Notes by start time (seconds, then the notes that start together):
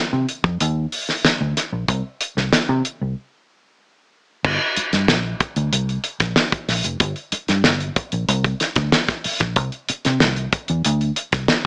0.13 C3
0.29 closed hi-hat
0.44 F2, kick
0.60 D#2, closed hi-hat
0.92 open hi-hat
1.09 snare
1.24 muted fingered electric bass stroke, snare, closed hi-hat
1.41 D2
1.57 snare, closed hi-hat
1.73 A#1
1.88 C2, kick, closed hi-hat
2.21 closed hi-hat
2.37 C2, snare
2.53 muted fingered electric bass stroke, snare, closed hi-hat
2.69 C3
2.85 closed hi-hat
3.01 C2
4.45 G1, kick, crash
4.76 muted fingered electric bass stroke, closed hi-hat
4.93 G2, snare, closed hi-hat
5.08 A#1, snare
5.40 kick, closed hi-hat
5.56 D2, closed hi-hat
5.72 C2, closed hi-hat
5.89 closed hi-hat
6.04 closed hi-hat
6.20 A#1, kick, snare, closed hi-hat
6.36 snare
6.52 kick, closed hi-hat
6.69 A#1, snare, open hi-hat
6.84 F1, closed hi-hat
7.00 G1, kick, closed hi-hat
7.16 closed hi-hat
7.32 muted fingered electric bass stroke, closed hi-hat
7.48 G2, snare, closed hi-hat
7.64 G1, snare
7.80 closed hi-hat
7.96 kick, closed hi-hat
8.12 A#1, closed hi-hat
8.28 C2, closed hi-hat
8.44 kick, closed hi-hat
8.60 snare, closed hi-hat
8.76 D2, kick, snare, closed hi-hat
8.92 snare
9.09 kick, snare, closed hi-hat
9.24 muted fingered electric bass stroke, open hi-hat
9.40 A#1, kick, snare, closed hi-hat
9.56 C2, kick, closed hi-hat
9.72 closed hi-hat
9.89 muted fingered electric bass stroke, closed hi-hat
10.05 C3, snare, closed hi-hat
10.20 C2, snare
10.36 closed hi-hat
10.53 kick, closed hi-hat
10.68 E2, closed hi-hat
10.85 D2, closed hi-hat
11.01 closed hi-hat
11.16 closed hi-hat
11.32 C2, kick, snare, closed hi-hat
11.48 snare